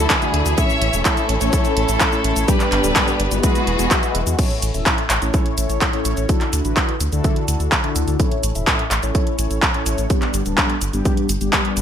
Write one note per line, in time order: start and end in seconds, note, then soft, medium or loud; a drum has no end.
0.00 0.14 D3 medium
0.00 0.56 D3 medium
0.00 2.44 E3 medium
0.00 0.56 F#3 medium
0.00 0.56 A3 medium
0.00 0.14 D4 medium
0.00 0.14 E4 medium
0.00 0.56 E4 medium
0.00 0.14 F#4 medium
0.00 0.14 A4 medium
0.10 0.58 E4 medium
0.10 0.58 G#4 loud
0.10 kick loud
0.10 clap loud
0.10 closed hi-hat medium
0.10 cabasa soft
0.22 0.55 D3 medium
0.22 0.55 A3 loud
0.22 0.55 D4 medium
0.22 0.55 E4 medium
0.22 0.55 F#4 medium
0.22 closed hi-hat soft
0.22 cabasa soft
0.34 0.42 D2 loud
0.34 closed hi-hat medium
0.46 0.54 D2 medium
0.46 closed hi-hat medium
0.46 cabasa medium
0.58 0.91 A2 medium
0.58 2.46 A3 medium
0.58 0.91 C#4 medium
0.58 2.46 C#4 medium
0.58 0.91 E4 medium
0.58 0.91 A4 medium
0.58 0.91 C#5 medium
0.58 1.06 C#5 medium
0.58 1.05 E5 loud
0.58 kick loud
0.58 closed hi-hat medium
0.58 cabasa medium
0.70 cabasa soft
0.82 0.90 A1 loud
0.82 closed hi-hat medium
0.93 1.02 E1 medium
0.93 1.22 A2 medium
0.93 1.22 C#4 medium
0.93 1.22 E4 medium
0.93 1.22 A4 medium
0.93 1.22 E5 medium
0.93 closed hi-hat medium
0.93 cabasa medium
1.05 1.39 E4 medium
1.05 1.39 A4 loud
1.05 kick loud
1.05 clap loud
1.05 closed hi-hat medium
1.05 cabasa medium
1.17 closed hi-hat soft
1.17 cabasa soft
1.29 1.38 A1 medium
1.29 closed hi-hat medium
1.41 1.50 A1 medium
1.41 1.74 A2 medium
1.41 1.74 C#4 medium
1.41 1.74 E4 medium
1.41 1.74 A4 medium
1.41 1.52 A4 medium
1.41 1.74 C#5 loud
1.41 1.53 C#5 medium
1.41 closed hi-hat medium
1.41 cabasa medium
1.53 2.49 E4 medium
1.53 2.48 A4 loud
1.53 kick loud
1.53 closed hi-hat medium
1.53 cabasa medium
1.65 closed hi-hat soft
1.65 cabasa soft
1.77 1.85 A1 medium
1.77 2.05 A2 medium
1.77 2.05 C#4 medium
1.77 2.05 E4 medium
1.77 2.05 A4 medium
1.77 2.05 C#5 medium
1.77 closed hi-hat medium
1.89 1.97 A1 medium
1.89 closed hi-hat medium
1.89 cabasa medium
2.00 kick loud
2.00 clap loud
2.00 closed hi-hat medium
2.00 cabasa medium
2.12 2.45 A2 loud
2.12 2.45 C#4 medium
2.12 2.45 E4 medium
2.12 2.45 A4 medium
2.12 2.45 C#5 loud
2.12 cabasa soft
2.24 2.33 A1 medium
2.24 closed hi-hat medium
2.36 2.45 A1 medium
2.36 closed hi-hat medium
2.36 cabasa medium
2.48 2.81 G2 medium
2.48 2.81 G3 medium
2.48 3.43 G3 medium
2.48 2.81 B3 medium
2.48 4.37 B3 medium
2.48 2.81 D4 medium
2.48 3.43 D4 medium
2.48 2.81 G4 medium
2.48 3.44 G4 medium
2.48 3.43 B4 loud
2.48 kick loud
2.48 closed hi-hat medium
2.48 cabasa medium
2.60 clap soft
2.60 closed hi-hat soft
2.60 cabasa soft
2.72 2.81 G1 medium
2.72 clap medium
2.72 closed hi-hat medium
2.84 2.92 D1 medium
2.84 3.12 G2 medium
2.84 3.12 G3 medium
2.84 3.12 B3 medium
2.84 3.12 D4 medium
2.84 3.12 A4 medium
2.84 closed hi-hat medium
2.84 cabasa medium
2.96 kick loud
2.96 clap loud
2.96 closed hi-hat medium
2.96 cabasa soft
3.08 closed hi-hat soft
3.08 cabasa soft
3.20 3.28 G1 medium
3.20 closed hi-hat medium
3.31 3.40 G1 medium
3.31 3.64 G#3 loud
3.31 3.64 B3 medium
3.31 3.64 E4 medium
3.31 3.64 F#4 loud
3.31 closed hi-hat medium
3.31 cabasa medium
3.43 4.38 E3 medium
3.43 4.38 F#3 medium
3.43 4.38 G#3 medium
3.43 4.38 F#4 medium
3.43 4.11 G#4 medium
3.43 4.11 B4 medium
3.43 kick loud
3.43 closed hi-hat medium
3.43 cabasa medium
3.55 closed hi-hat soft
3.55 cabasa soft
3.67 3.76 E1 medium
3.67 closed hi-hat medium
3.79 3.88 E1 medium
3.79 4.00 G#3 medium
3.79 4.00 B3 medium
3.79 4.00 E4 medium
3.79 4.00 F#4 medium
3.79 closed hi-hat medium
3.79 cabasa medium
3.91 kick loud
3.91 clap loud
3.91 closed hi-hat medium
3.91 cabasa soft
4.03 4.24 G#3 medium
4.03 4.24 B3 medium
4.03 4.24 E4 medium
4.03 4.24 B4 loud
4.03 closed hi-hat soft
4.03 cabasa soft
4.15 4.23 E1 medium
4.15 closed hi-hat medium
4.27 4.35 E2 medium
4.27 4.36 G#3 medium
4.27 4.36 B3 medium
4.27 4.36 E4 medium
4.27 4.36 F#4 loud
4.27 closed hi-hat medium
4.27 cabasa medium
4.39 4.71 A2 medium
4.39 4.72 C#4 medium
4.39 4.71 E4 medium
4.39 4.71 A4 medium
4.39 4.72 C#5 medium
4.39 kick loud
4.39 closed hi-hat medium
4.39 crash medium
4.39 cabasa soft
4.51 closed hi-hat soft
4.62 4.71 A1 medium
4.62 closed hi-hat medium
4.62 cabasa medium
4.74 4.83 E1 medium
4.74 5.03 A2 medium
4.74 5.03 C#4 medium
4.74 5.03 E4 medium
4.74 5.03 A4 medium
4.74 5.03 E5 medium
4.74 closed hi-hat soft
4.74 cabasa soft
4.86 kick loud
4.86 clap loud
4.86 closed hi-hat medium
4.86 cabasa soft
4.98 closed hi-hat soft
5.10 5.19 A1 medium
5.10 clap medium
5.10 closed hi-hat medium
5.10 cabasa medium
5.22 5.30 A1 medium
5.22 5.55 A2 medium
5.22 5.55 C#4 medium
5.22 5.55 E4 medium
5.22 5.55 A4 medium
5.22 5.55 C#5 loud
5.22 closed hi-hat soft
5.22 cabasa soft
5.34 kick loud
5.34 closed hi-hat medium
5.34 cabasa soft
5.46 closed hi-hat soft
5.58 5.66 A1 medium
5.58 5.86 A2 medium
5.58 5.86 C#4 medium
5.58 5.86 E4 medium
5.58 5.86 A4 medium
5.58 5.86 C#5 medium
5.58 closed hi-hat medium
5.58 cabasa medium
5.70 5.78 A1 medium
5.70 closed hi-hat soft
5.70 cabasa soft
5.81 kick loud
5.81 clap loud
5.81 closed hi-hat medium
5.81 cabasa soft
5.93 6.26 A2 loud
5.93 6.26 C#4 medium
5.93 6.26 E4 medium
5.93 6.26 A4 medium
5.93 6.26 C#5 loud
5.93 closed hi-hat soft
6.05 6.14 A1 medium
6.05 closed hi-hat loud
6.05 cabasa medium
6.17 6.26 A1 medium
6.17 closed hi-hat soft
6.17 cabasa soft
6.29 6.62 D3 medium
6.29 6.62 D4 medium
6.29 6.62 E4 medium
6.29 6.62 F#4 medium
6.29 6.62 A4 medium
6.29 kick loud
6.29 closed hi-hat medium
6.29 cabasa soft
6.41 clap soft
6.41 closed hi-hat soft
6.53 6.62 D2 loud
6.53 closed hi-hat medium
6.53 cabasa medium
6.65 6.73 A1 medium
6.65 6.93 D3 medium
6.65 6.93 D4 medium
6.65 6.93 E4 medium
6.65 6.93 F#4 medium
6.65 6.93 B4 medium
6.65 closed hi-hat soft
6.65 cabasa soft
6.77 kick loud
6.77 clap loud
6.77 closed hi-hat medium
6.77 cabasa soft
6.89 closed hi-hat soft
7.00 7.09 D2 medium
7.00 closed hi-hat medium
7.00 cabasa medium
7.12 7.21 D2 medium
7.12 7.45 D3 medium
7.12 7.45 D4 medium
7.12 7.45 E4 medium
7.12 7.45 F#4 medium
7.12 7.45 A4 loud
7.12 closed hi-hat soft
7.12 cabasa soft
7.24 kick loud
7.24 closed hi-hat medium
7.24 cabasa soft
7.36 closed hi-hat soft
7.48 7.57 D2 medium
7.48 7.76 D3 medium
7.48 7.76 D4 medium
7.48 7.76 E4 medium
7.48 7.76 F#4 medium
7.48 7.76 A4 medium
7.48 closed hi-hat medium
7.48 cabasa medium
7.60 7.69 D2 medium
7.60 closed hi-hat soft
7.60 cabasa soft
7.72 kick loud
7.72 clap loud
7.72 closed hi-hat medium
7.72 cabasa soft
7.84 8.17 D3 loud
7.84 8.17 D4 medium
7.84 8.17 E4 medium
7.84 8.17 F#4 medium
7.84 8.17 A4 loud
7.84 closed hi-hat soft
7.96 8.04 D2 medium
7.96 closed hi-hat medium
7.96 cabasa medium
8.08 8.16 D2 medium
8.08 closed hi-hat soft
8.08 cabasa soft
8.20 8.53 A2 medium
8.20 8.53 C#4 medium
8.20 8.53 E4 medium
8.20 8.53 A4 medium
8.20 8.53 C#5 medium
8.20 kick loud
8.20 closed hi-hat medium
8.20 cabasa soft
8.32 closed hi-hat soft
8.43 8.52 A1 medium
8.43 closed hi-hat medium
8.43 cabasa medium
8.55 8.64 E1 medium
8.55 8.84 A2 medium
8.55 8.84 C#4 medium
8.55 8.84 E4 medium
8.55 8.84 A4 medium
8.55 8.84 E5 medium
8.55 closed hi-hat soft
8.55 cabasa soft
8.67 kick loud
8.67 clap loud
8.67 closed hi-hat medium
8.67 cabasa soft
8.79 closed hi-hat soft
8.91 9.00 A1 medium
8.91 clap medium
8.91 closed hi-hat medium
8.91 cabasa medium
9.03 9.11 A1 medium
9.03 9.36 A2 medium
9.03 9.36 C#4 medium
9.03 9.36 E4 medium
9.03 9.36 A4 medium
9.03 9.36 C#5 loud
9.03 closed hi-hat soft
9.03 cabasa soft
9.15 kick loud
9.15 closed hi-hat medium
9.15 cabasa soft
9.27 closed hi-hat soft
9.39 9.47 A1 medium
9.39 9.67 A2 medium
9.39 9.67 C#4 medium
9.39 9.67 E4 medium
9.39 9.67 A4 medium
9.39 9.67 C#5 medium
9.39 closed hi-hat medium
9.39 cabasa medium
9.51 9.59 A1 medium
9.51 closed hi-hat soft
9.51 cabasa soft
9.62 kick loud
9.62 clap loud
9.62 closed hi-hat medium
9.62 cabasa soft
9.74 10.07 A2 medium
9.74 10.07 C#4 medium
9.74 10.07 E4 medium
9.74 10.07 A4 medium
9.74 10.07 C#5 loud
9.74 closed hi-hat soft
9.86 9.95 A1 medium
9.86 closed hi-hat medium
9.86 cabasa medium
9.98 10.07 A1 medium
9.98 closed hi-hat soft
9.98 cabasa soft
10.10 10.43 G2 medium
10.10 10.43 G3 medium
10.10 10.43 B3 medium
10.10 10.43 D4 medium
10.10 10.43 G4 medium
10.10 kick loud
10.10 closed hi-hat medium
10.10 cabasa soft
10.22 clap soft
10.22 closed hi-hat soft
10.34 10.42 G1 medium
10.34 closed hi-hat medium
10.34 cabasa medium
10.46 10.54 D1 medium
10.46 10.74 G2 medium
10.46 10.74 G3 medium
10.46 10.74 B3 medium
10.46 10.74 D4 medium
10.46 10.74 A4 medium
10.46 closed hi-hat soft
10.46 cabasa soft
10.58 kick loud
10.58 clap loud
10.58 closed hi-hat medium
10.58 cabasa soft
10.70 closed hi-hat soft
10.81 10.90 G1 medium
10.81 closed hi-hat medium
10.81 cabasa medium
10.93 11.02 G1 medium
10.93 11.26 G2 medium
10.93 11.26 G3 medium
10.93 11.26 B3 medium
10.93 11.26 D4 medium
10.93 11.26 G4 loud
10.93 closed hi-hat soft
10.93 cabasa soft
11.05 kick loud
11.05 closed hi-hat medium
11.05 cabasa soft
11.17 closed hi-hat soft
11.29 11.38 G1 medium
11.29 closed hi-hat medium
11.29 cabasa medium
11.41 11.50 G1 medium
11.41 11.62 G2 medium
11.41 11.62 G3 medium
11.41 11.62 B3 medium
11.41 11.62 D4 medium
11.41 11.62 G4 medium
11.41 closed hi-hat soft
11.41 cabasa soft
11.53 kick loud
11.53 clap loud
11.53 closed hi-hat medium
11.53 cabasa soft
11.65 11.82 G2 medium
11.65 11.82 G3 medium
11.65 11.82 B3 medium
11.65 11.82 D4 medium
11.65 11.82 B4 loud
11.65 closed hi-hat soft
11.77 11.82 G1 loud
11.77 closed hi-hat medium
11.77 cabasa medium